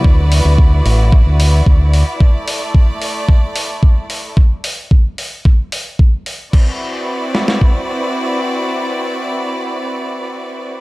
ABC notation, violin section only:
X:1
M:4/4
L:1/8
Q:1/4=111
K:Dmix
V:1 name="Violin section"
[EFBd]8 | [A,d]8 | z8 | [CEFBd]8- |
[CEFBd]8 |]